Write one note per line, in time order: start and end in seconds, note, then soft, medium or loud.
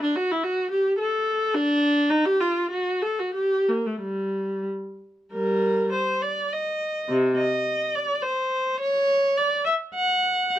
0.03 0.15 D4 medium
0.16 0.29 F#4 medium
0.32 0.44 E4 medium
0.43 0.71 F#4 medium
0.71 0.98 G4 medium
0.99 1.53 A4 medium
1.54 2.11 D4 medium
2.10 2.25 D#4 medium
2.25 2.40 G4 medium
2.40 2.70 F4 medium
2.71 3.01 F#4 medium
3.02 3.18 A4 medium
3.19 3.35 F#4 medium
3.34 3.68 G4 medium
3.69 3.85 A#3 medium
3.87 4.02 A3 medium
4.02 4.66 G3 medium
5.33 5.89 G3 medium
5.33 5.89 A#4 medium
5.92 6.21 C5 medium
6.23 6.51 D5 medium
6.53 7.09 D#5 medium
7.09 7.37 C3 medium
7.37 7.94 D#5 medium
7.95 8.23 D5 medium
8.22 8.80 C5 medium
8.80 9.36 C#5 medium
9.37 9.65 D5 medium
9.65 9.73 E5 medium
9.95 10.54 F#5 medium